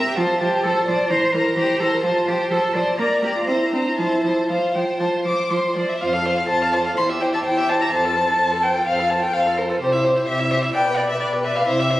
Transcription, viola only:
0.17 F3
0.41 F3
0.64 F3
0.87 F3
1.10 E3
1.34 E3
1.56 E3
1.80 E3
2.03 F3
2.27 F3
2.50 F3
2.74 F3
2.98 A#3
3.22 A#3
3.47 C4
3.73 C4
3.98 F3
4.24 F3
4.50 F3
4.75 F3
5.00 F3
5.25 F3
5.50 F3
5.76 F3
6.01 F4
6.13 A4
6.26 F4
6.38 A4
6.49 F4
6.61 A4
6.74 F4
6.86 A4
6.97 E4
7.09 G4
7.21 E4
7.33 G4
7.46 E4
7.58 G4
7.70 E4
7.82 G4
7.94 A4
8.05 F4
8.17 A4
8.29 F4
8.40 A4
8.52 F4
8.65 A4
8.76 F4
8.88 A4
9.00 F4
9.10 A4
9.22 F4
9.35 A4
9.46 F4
9.57 A4
9.70 F4
9.81 G4
9.92 E4
10.04 G4
10.15 E4
10.27 G4
10.39 E4
10.51 G4
10.62 E4
10.74 B4
10.86 G4
10.97 B4
11.09 G4
11.20 B4
11.33 G4
11.44 B4
11.55 G4
11.67 E4
11.79 G4
11.90 E4

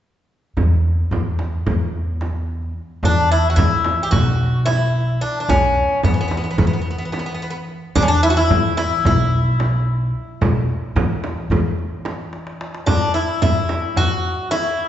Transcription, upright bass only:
0.57 E2
1.11 E2
1.67 E2
3.03 E2
3.57 E3
4.12 B1
5.48 B1
6.04 E3
6.58 E3
7.96 E2
8.50 E3
9.05 B1
10.41 B1
10.96 E3
11.50 E3

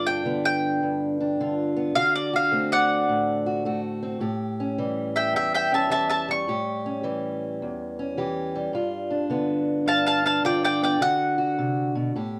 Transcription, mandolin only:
0.07 G5
0.45 G5
1.95 F5
2.15 D5
2.36 F5
2.72 D5 F#5
5.16 E5 G5
5.36 E5 G5
5.54 E5 G5
5.74 E5 A5
5.92 E5 A5
6.09 E5 A5
6.31 C#6
9.88 F5 A5
10.06 F5 A5
10.26 F5 A5
10.45 D5 G5
10.65 D5 G5
10.84 D5 G5
11.02 F#5

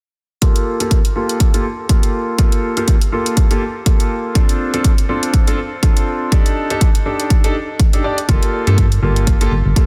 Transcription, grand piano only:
0.42 A#3 F4 G4 A4
0.80 A#3 F4 G4 A4
1.16 A#3 F4 G4 A4
1.54 A#3 F4 G4 A4
1.89 A#3 F4 G4 A4
2.39 A#3 F4 G4 A4
2.77 A#3 F4 G4 A4
3.12 A#3 F4 G4 A4
3.51 A#3 F4 G4 A4
3.86 A#3 F4 G4 A4
4.35 C4 D4 F4 A4
4.74 C4 D4 F4 A4
5.09 C4 D4 F4 A4
5.47 C4 D4 F4 A4
5.83 C4 D4 F4 A4
6.32 D4 D#4 G4 A4
6.70 D4 D#4 G4 A4
7.06 D4 D#4 G4 A4
7.44 D4 D#4 G4 A4
7.93 D4 D#4 G4 A4
8.04 D4 D#4 G4 D5
8.29 A#3 F4 G4 A4
8.67 A#3 F4 G4 A4
9.03 A#3 F4 G4 A4
9.41 A#3 F4 G4 A4
9.76 A#3 F4 G4 A4

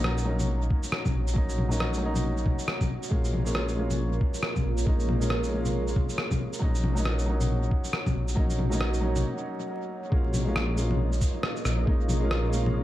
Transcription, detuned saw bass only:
Already playing: A#1
1.14 A#1
1.36 A#1
3.11 A#1
4.65 A#1
4.87 A#1
6.62 A#1
8.15 A#1
8.37 A#1
10.12 A#1
11.65 A#1
11.87 A#1

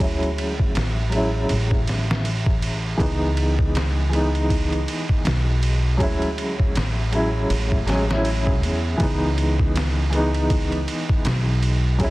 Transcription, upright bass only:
0.00 D2
0.75 A1
1.50 A1
2.99 C#2
5.25 B1
6.00 D2
6.75 A1
7.50 A1
8.63 E2
9.00 C#2
11.25 B1
12.00 D2

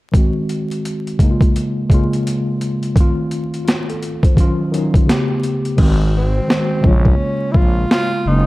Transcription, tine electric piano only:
0.12 D#3 G#3 C4
0.17 F#4
1.19 C#3 G#3 A#3
1.24 D#4
1.31 F4
1.89 C#3 G#3 A#3
1.94 F4
2.95 D#3 A3 C4
3.01 F4
3.65 F4
3.90 A4
4.25 C5
4.35 D#3 F#3 C#4
4.40 F4
4.71 D#3 F#3 C#4
4.77 D#4
5.06 C#3 A3 B3
5.12 G4
5.77 D#3 G#3 C4
5.82 F#4
6.47 D#3 G#3 C4
6.53 F#4
6.81 C3 G#3 A#3
6.86 C#3 F4
8.26 C#3 G#3 A#3
8.32 C#4

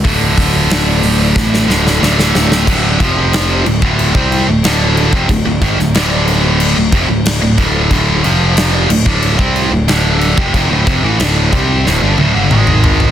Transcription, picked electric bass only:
0.05 D1
0.37 D1
0.70 D1
1.03 D1
1.36 A1
1.69 D1
2.02 D1
2.35 D1
2.67 D1
3.00 F1
3.67 D1
3.82 D1
4.15 C2
4.48 D1
4.65 D1
5.13 F1
5.29 D1
5.46 D1
5.62 G#1
5.79 D1
5.95 D1
6.77 D1
6.93 F1
7.10 D1
7.42 D1
7.58 D1
7.90 D1
8.25 F1
8.90 D1
9.06 D1
9.39 C2
9.71 D1
9.88 D1
10.37 F1
10.54 F1
10.71 D1
10.87 F1
11.03 A1
11.20 D1
11.53 C2
11.86 D1
12.02 G1
12.19 D1
12.36 G1
12.52 G#1

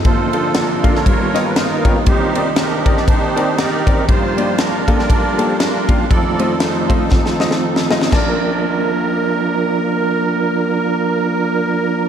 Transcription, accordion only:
0.05 F4 A4 C5
0.56 D4 F4 A#4
0.95 F4 A#4 C#5
1.46 B4
1.57 D#4 F4 A#4
2.08 D#4 G4 C5
2.57 D4 D#4 A#4
2.96 D5
3.08 D#4 G4 C5
3.58 G4 A#4 D5
4.08 F4 C5
4.59 D4 F4 A#4
4.99 F4 A#4 D5
5.48 C5
5.59 D4 F4 A#4
6.10 A4 D5
6.61 D#4 A4 C5
7.11 C4 D#4 A4
8.12 A#4

